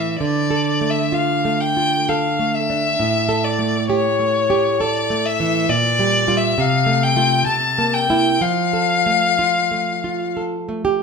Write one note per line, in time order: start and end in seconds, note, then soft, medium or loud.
0.00 0.16 A2 soft
0.00 0.20 E3 soft
0.00 0.19 E5 soft
0.20 2.95 D3 soft
0.20 0.91 D5 medium
0.51 1.00 A4 soft
0.81 1.32 A3 soft
0.90 1.15 E5 soft
1.12 1.63 F4 soft
1.12 1.62 F5 soft
1.45 1.95 A3 soft
1.61 2.10 G5 medium
1.77 2.26 F4 soft
2.09 2.57 A4 soft
2.09 2.56 F5 medium
2.39 2.87 A3 soft
2.54 3.46 E5 medium
2.70 2.99 D4 soft
3.00 5.65 A2 soft
3.29 3.77 A4 soft
3.45 3.89 D5 medium
3.59 4.07 A3 soft
3.90 4.37 G4 soft
3.90 4.82 C#5 medium
4.20 4.67 A3 soft
4.50 4.80 G4 soft
4.80 5.28 A4 soft
4.80 5.27 D5 medium
5.10 5.57 A3 soft
5.26 5.71 E5 medium
5.40 5.69 E3 soft
5.69 6.54 A#2 soft
5.69 6.39 D5 medium
5.99 6.27 G3 soft
6.28 6.54 G3 soft
6.28 6.54 F4 soft
6.37 6.61 E5 medium
6.58 7.44 C3 medium
6.58 7.05 F5 medium
6.86 7.15 A3 soft
7.04 7.46 G5 medium
7.16 7.43 A3 soft
7.16 7.43 F4 soft
7.46 8.38 C3 medium
7.46 7.96 A5 medium
7.78 8.08 A#3 soft
7.94 8.43 G5 medium
8.10 8.38 A#3 soft
8.10 8.38 E4 soft
8.41 11.03 F3 soft
8.41 10.37 F5 medium
8.73 9.25 A4 soft
9.06 9.58 A3 soft
9.39 9.91 F4 soft
9.71 10.23 A3 soft
10.04 10.56 F4 soft
10.37 10.84 A4 soft
10.69 11.03 A3 soft
10.85 11.03 G4 medium